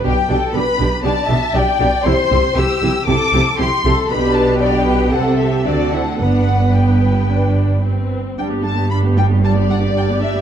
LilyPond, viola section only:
\new Staff \with { instrumentName = "Viola section" } { \time 4/4 \key g \major \tempo 4 = 117 << { g'8 g'8 g'8 g'8 g'8 g'8 g'8 g'8 | g'8 g'8 g'8 g'8 g'8 g'8 g'8 g'8 | g'4 g'4 a'8 g'8 fis'8 e'8 | d'4 b4 d'4 c'4 |
d'16 g'16 d'16 g'16 d'16 g'16 d'16 g'16 d'16 g'16 d'16 g'16 d'16 g'16 d'16 g'16 | } \\ { d'8 d'8 d'8 d'8 d'8 d'8 d'8 d'8 | e'8 e'8 e'8 e'8 e'8 e'8 e'8 e'8 | d'4 d'4 c'4 c'4 | b4 r2. |
g16 b16 g16 b16 g16 b16 g16 b16 g16 b16 g16 b16 g16 b16 g16 b16 | } >> }